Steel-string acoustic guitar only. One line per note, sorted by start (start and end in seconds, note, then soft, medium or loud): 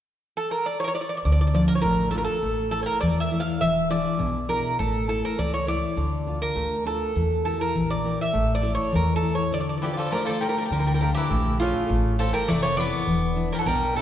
1.25 1.82 D3 medium
1.54 2.01 F3 soft
1.54 2.02 D4 soft
1.54 2.02 F4 soft
1.84 2.12 A3 medium
2.13 2.37 A3 soft
2.13 2.37 D4 soft
2.13 2.37 F4 soft
2.43 3.00 A3 medium
2.72 3.20 E4 soft
2.72 3.20 A4 soft
2.72 3.20 C#5 medium
3.02 3.60 E3 medium
3.31 3.55 E4 soft
3.31 3.55 A4 soft
3.31 3.55 C#5 soft
3.61 4.18 E3 medium
3.90 4.38 D4 soft
3.90 4.38 E4 soft
3.90 4.38 G#4 medium
4.19 4.77 B2 medium
4.48 4.73 D4 soft
4.48 4.73 E4 soft
4.48 4.73 G#4 soft
4.79 5.37 A3 medium
5.08 5.55 E4 soft
5.08 5.56 A4 soft
5.08 5.56 C#5 soft
5.38 5.95 E3 medium
5.67 5.91 E4 soft
5.67 5.91 A4 soft
5.67 5.91 C#5 soft
5.97 6.55 D3 medium
6.27 6.74 D4 soft
6.27 6.75 F4 soft
6.55 7.14 A3 medium
6.85 7.09 D4 soft
6.85 7.10 F4 soft
6.85 7.10 A4 soft
7.15 7.73 E3 medium
7.45 7.93 E4 soft
7.45 7.93 G4 soft
7.45 7.93 A#4 medium
7.75 8.33 E3 medium
8.04 8.28 E4 soft
8.04 8.28 G4 soft
8.04 8.29 A#4 soft
8.33 8.91 A3 medium
8.62 9.10 E4 medium
8.62 9.10 A4 soft
8.62 9.11 C#5 medium
8.92 9.50 E3 medium
9.22 9.46 E4 soft
9.22 9.46 A4 soft
9.22 9.46 C#5 soft
9.52 10.10 D3 medium
9.83 10.30 D4 soft
9.83 10.30 F4 soft
9.83 10.30 A4 soft
10.12 10.69 A3 medium
10.42 10.66 D4 soft
10.42 10.66 F4 soft
10.42 10.66 A4 soft
10.72 11.29 D3 medium
11.01 11.48 D4 soft
11.01 11.49 A4 medium
11.01 11.49 F5 soft
11.30 11.88 A3 medium
11.59 11.83 D4 soft
11.59 11.83 F4 soft
11.59 11.84 A4 soft
11.89 12.47 A3 medium
12.19 12.66 E4 medium
12.19 12.66 A4 soft
12.19 12.67 C#5 medium
12.48 13.05 E3 medium
12.77 13.01 E4 soft
12.77 13.01 A4 soft
12.77 13.02 C#5 soft
13.07 13.64 E3 medium
13.36 13.84 D4 medium
13.36 13.84 E4 soft
13.66 14.02 B2 medium
13.95 14.02 D4 soft
13.95 14.02 E4 soft
13.95 14.02 G#4 medium